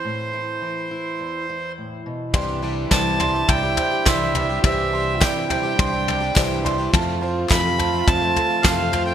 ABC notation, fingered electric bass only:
X:1
M:4/4
L:1/8
Q:1/4=105
K:C
V:1 name="Fingered electric bass" clef=bass
z8 | C,,2 C,,2 C,, z C,,2 | C,,2 C,2 C,,2 C,,2 | F,,2 F,,2 F,, z F,,2 |]